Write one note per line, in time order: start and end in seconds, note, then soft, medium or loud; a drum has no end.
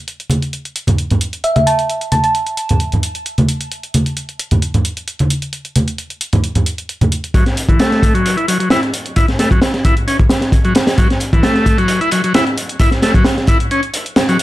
0.08 closed hi-hat soft
0.20 closed hi-hat soft
0.30 closed hi-hat medium
0.30 high conga medium
0.42 closed hi-hat soft
0.53 closed hi-hat soft
0.65 closed hi-hat soft
0.76 closed hi-hat medium
0.87 closed hi-hat soft
0.87 high conga medium
0.87 low conga medium
0.98 closed hi-hat soft
1.10 closed hi-hat soft
1.10 low conga medium
1.21 closed hi-hat medium
1.33 closed hi-hat soft
1.44 1.52 E5 medium
1.44 closed hi-hat soft
1.56 1.63 E5 medium
1.56 closed hi-hat soft
1.56 high conga medium
1.67 1.87 A5 medium
1.67 closed hi-hat medium
1.79 closed hi-hat soft
1.90 closed hi-hat soft
2.01 closed hi-hat soft
2.12 2.20 A5 medium
2.12 closed hi-hat medium
2.12 high conga medium
2.24 2.31 A5 medium
2.24 closed hi-hat soft
2.35 closed hi-hat soft
2.46 closed hi-hat soft
2.57 closed hi-hat medium
2.69 closed hi-hat soft
2.69 high conga medium
2.69 low conga medium
2.80 closed hi-hat soft
2.92 closed hi-hat soft
2.92 low conga medium
3.03 closed hi-hat medium
3.15 closed hi-hat soft
3.26 closed hi-hat soft
3.38 closed hi-hat soft
3.38 high conga medium
3.49 closed hi-hat medium
3.61 closed hi-hat soft
3.72 closed hi-hat soft
3.83 closed hi-hat soft
3.94 closed hi-hat medium
3.94 high conga medium
4.06 closed hi-hat soft
4.17 closed hi-hat soft
4.29 closed hi-hat soft
4.39 closed hi-hat medium
4.51 closed hi-hat soft
4.51 high conga medium
4.51 low conga medium
4.62 closed hi-hat soft
4.74 closed hi-hat soft
4.74 low conga medium
4.85 closed hi-hat medium
4.97 closed hi-hat soft
5.08 closed hi-hat soft
5.19 closed hi-hat soft
5.19 high conga medium
5.30 closed hi-hat medium
5.42 closed hi-hat soft
5.53 closed hi-hat soft
5.65 closed hi-hat soft
5.76 closed hi-hat medium
5.76 high conga medium
5.88 closed hi-hat soft
5.98 closed hi-hat soft
6.10 closed hi-hat soft
6.21 closed hi-hat medium
6.33 closed hi-hat soft
6.33 high conga medium
6.33 low conga loud
6.44 closed hi-hat soft
6.55 closed hi-hat soft
6.55 low conga medium
6.66 closed hi-hat medium
6.78 closed hi-hat soft
6.89 closed hi-hat soft
7.01 closed hi-hat soft
7.01 high conga medium
7.01 low conga medium
7.12 closed hi-hat medium
7.24 closed hi-hat soft
7.34 7.44 F#3 loud
7.34 kick loud
7.34 closed hi-hat medium
7.34 closed hi-hat soft
7.46 snare soft
7.46 closed hi-hat soft
7.57 closed hi-hat medium
7.69 7.80 E3 medium
7.69 kick medium
7.69 closed hi-hat soft
7.79 8.14 A3 medium
7.79 snare loud
7.79 closed hi-hat medium
7.79 closed hi-hat soft
7.92 snare soft
7.92 closed hi-hat soft
8.03 kick medium
8.03 closed hi-hat medium
8.15 8.36 F#3 medium
8.15 closed hi-hat soft
8.26 closed hi-hat soft
8.26 closed hi-hat medium
8.37 8.46 E4 medium
8.37 closed hi-hat soft
8.48 8.58 F#3 medium
8.48 closed hi-hat medium
8.60 8.69 F#3 medium
8.60 closed hi-hat soft
8.70 8.81 E4 medium
8.70 snare loud
8.70 closed hi-hat medium
8.70 closed hi-hat soft
8.83 closed hi-hat soft
8.94 closed hi-hat medium
9.06 closed hi-hat soft
9.16 9.26 E4 medium
9.16 kick loud
9.16 closed hi-hat medium
9.16 closed hi-hat soft
9.28 snare soft
9.28 closed hi-hat soft
9.39 9.49 A3 medium
9.39 snare medium
9.39 closed hi-hat medium
9.51 9.60 F#3 medium
9.51 kick medium
9.51 closed hi-hat soft
9.62 snare loud
9.62 closed hi-hat soft
9.62 closed hi-hat medium
9.74 snare soft
9.74 closed hi-hat soft
9.85 9.95 E4 medium
9.85 kick loud
9.85 closed hi-hat medium
9.97 closed hi-hat soft
10.08 10.17 C#4 medium
10.08 closed hi-hat soft
10.08 closed hi-hat medium
10.19 kick medium
10.19 closed hi-hat soft
10.29 snare loud
10.29 closed hi-hat medium
10.41 snare soft
10.41 closed hi-hat soft
10.52 kick medium
10.52 closed hi-hat medium
10.52 closed hi-hat soft
10.65 10.74 F#3 medium
10.65 closed hi-hat soft
10.75 snare loud
10.75 closed hi-hat medium
10.87 snare medium
10.87 closed hi-hat medium
10.87 closed hi-hat soft
10.98 11.08 F#3 loud
10.98 kick loud
10.98 closed hi-hat medium
10.98 closed hi-hat soft
11.10 snare soft
11.10 closed hi-hat soft
11.20 closed hi-hat medium
11.33 11.43 E3 medium
11.33 kick medium
11.33 closed hi-hat soft
11.43 11.77 A3 medium
11.43 snare loud
11.43 closed hi-hat medium
11.43 closed hi-hat soft
11.55 snare soft
11.55 closed hi-hat soft
11.66 kick medium
11.66 closed hi-hat medium
11.78 12.00 F#3 medium
11.78 closed hi-hat soft
11.88 closed hi-hat medium
11.88 closed hi-hat soft
12.01 12.10 E4 medium
12.01 closed hi-hat soft
12.11 12.22 F#3 medium
12.11 closed hi-hat medium
12.24 12.33 F#3 medium
12.24 closed hi-hat soft
12.34 12.44 E4 medium
12.34 snare loud
12.34 closed hi-hat medium
12.34 closed hi-hat soft
12.47 closed hi-hat soft
12.57 closed hi-hat medium
12.69 closed hi-hat soft
12.80 12.90 E4 medium
12.80 kick loud
12.80 closed hi-hat medium
12.80 closed hi-hat soft
12.91 snare soft
12.91 closed hi-hat soft
13.02 13.13 A3 medium
13.02 snare medium
13.02 closed hi-hat medium
13.14 13.24 F#3 medium
13.14 kick loud
13.14 closed hi-hat soft
13.24 snare loud
13.24 closed hi-hat medium
13.24 closed hi-hat soft
13.38 snare soft
13.38 closed hi-hat soft
13.47 13.58 E4 medium
13.47 kick medium
13.47 closed hi-hat medium
13.60 closed hi-hat soft
13.71 13.81 C#4 medium
13.71 closed hi-hat soft
13.83 closed hi-hat soft
13.94 closed hi-hat medium
14.06 closed hi-hat soft
14.16 snare loud
14.16 closed hi-hat medium
14.16 closed hi-hat soft
14.29 14.37 F#3 medium
14.29 closed hi-hat soft
14.39 closed hi-hat medium